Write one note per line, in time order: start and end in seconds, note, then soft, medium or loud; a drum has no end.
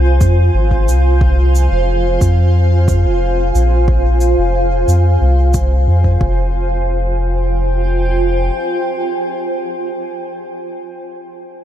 0.00 0.20 C2 medium
0.00 6.20 F4 medium
0.00 6.21 C5 medium
0.00 6.21 F5 medium
0.00 6.21 G#5 medium
0.21 0.50 F2 loud
0.21 kick medium
0.21 shaker medium
0.54 0.89 G#1 medium
0.71 kick medium
0.87 1.68 C2 medium
0.87 shaker medium
1.21 kick loud
1.55 shaker medium
1.71 2.18 F1 loud
2.21 3.06 F2 loud
2.21 kick medium
2.21 shaker medium
2.88 kick medium
2.88 shaker medium
3.05 3.51 F1 medium
3.55 4.35 A#1 loud
3.55 shaker soft
3.88 kick loud
4.21 shaker medium
4.38 4.84 F1 medium
4.88 5.17 F2 loud
4.88 shaker medium
5.21 5.87 C2 medium
5.54 kick medium
5.54 shaker medium
5.87 6.17 F2 medium
6.04 kick medium
6.21 8.50 F1 medium
6.21 9.97 F4 medium
6.21 kick medium
6.31 9.97 C5 medium
6.75 9.97 G5 medium
6.85 9.97 G#5 medium